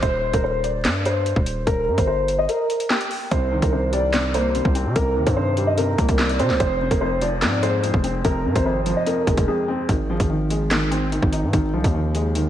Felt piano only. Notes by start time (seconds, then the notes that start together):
3.32 C3
3.52 D#3
3.73 C3
3.93 G3
4.13 C3
4.35 A#3
4.55 C3
4.75 C4
4.96 C3
5.16 D#3
5.37 C3
5.58 G3
5.78 C3
5.99 A#3
6.19 C3
6.40 C4
6.60 F2
6.81 C3
7.01 F2
7.22 F3
7.42 F2
7.63 G#3
7.83 F2
8.04 C4
8.24 F2
8.45 C3
8.66 F2
8.86 F3
9.06 F2
9.27 G#3
9.48 F2
9.68 C4
9.89 D#3
10.10 F3
10.30 D#3
10.51 G#3
10.71 D#3
10.91 C4
11.12 D#3
11.33 D#4
11.53 D#3
11.73 F3
11.94 D#3
12.15 G#3
12.35 D#3